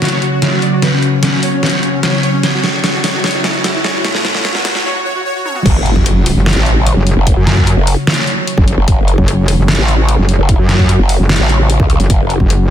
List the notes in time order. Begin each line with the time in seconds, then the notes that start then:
Already playing: C#3 F#3 F#4 C#5, riser
0.02 F#4, snare, closed hi-hat
0.05 closed hi-hat
0.09 C#5, closed hi-hat
0.22 F#4, closed hi-hat
0.32 F#4
0.42 snare, closed hi-hat
0.52 F#4
0.62 D5, closed hi-hat
0.72 F#4
0.82 B4, snare, closed hi-hat
0.93 C#4
1.03 C#4, closed hi-hat
1.23 C#4, snare, closed hi-hat
1.33 C#4
1.43 C#5, open hi-hat
1.53 C#4
1.63 C#4, snare, closed hi-hat
1.66 closed hi-hat
1.70 C#5, closed hi-hat
1.83 C#4, closed hi-hat
1.93 C#4
2.03 snare, closed hi-hat
2.13 C#4
2.23 C#5, closed hi-hat
2.33 C#4
2.43 E4 C#5, snare, closed hi-hat
2.53 F#4
2.63 F#4, snare, closed hi-hat
2.84 F#4, snare, closed hi-hat
2.94 F#4
3.04 C#5, snare, open hi-hat
3.14 F#4
3.24 C#5, snare, closed hi-hat
3.27 closed hi-hat
3.31 F#4, closed hi-hat
3.44 F#4, snare, closed hi-hat
3.64 F#4, snare, closed hi-hat
3.74 F#4
3.84 C#5, snare, closed hi-hat
3.94 F#4
4.04 C#5, snare, closed hi-hat
4.14 F#4, snare
4.25 F#4, snare, closed hi-hat
4.35 snare
4.45 C#5, snare, closed hi-hat
4.55 F#4, snare
4.65 F#4, snare, open hi-hat
4.75 snare
4.85 C#5
4.95 F#4
5.05 C#5
5.15 F#4
5.25 C#5
5.35 F#4
5.45 C#5, high tom
5.56 F#4, mid tom
5.66 F#1 C#3 F#3 F#4 C#5, kick, closed hi-hat, crash, impact
5.86 closed hi-hat
5.96 F#1, kick
6.06 closed hi-hat
6.26 open hi-hat
6.36 F#1
6.46 snare, closed hi-hat
6.50 closed hi-hat
6.53 A1, closed hi-hat
6.66 closed hi-hat
6.87 closed hi-hat
6.97 F#1
7.07 closed hi-hat
7.17 F#1
7.27 kick, closed hi-hat
7.37 F#2
7.47 snare, closed hi-hat
7.57 kick
7.67 closed hi-hat
7.77 F#1
7.87 open hi-hat
8.07 snare, closed hi-hat
8.11 closed hi-hat
8.14 closed hi-hat
8.27 closed hi-hat
8.47 closed hi-hat
8.58 F#1, kick
8.68 closed hi-hat
8.78 F#1
8.88 F#1, kick, closed hi-hat
9.08 closed hi-hat
9.18 F#1, kick
9.28 closed hi-hat
9.48 open hi-hat
9.58 F#1
9.68 snare, closed hi-hat
9.72 closed hi-hat
9.75 A1, closed hi-hat
9.88 closed hi-hat
10.09 closed hi-hat
10.19 F#1
10.29 closed hi-hat
10.39 F#1
10.49 kick, closed hi-hat
10.59 F#2
10.69 snare, closed hi-hat
10.79 kick
10.89 closed hi-hat
10.99 F#1
11.09 open hi-hat
11.19 F#1
11.29 snare, closed hi-hat
11.33 closed hi-hat
11.36 A1, closed hi-hat
11.49 closed hi-hat
11.70 closed hi-hat
11.80 C#2, kick
11.90 closed hi-hat
12.00 F#1, closed hi-hat
12.10 F#1 B4, kick, closed hi-hat
12.30 closed hi-hat
12.40 F#1, kick
12.50 closed hi-hat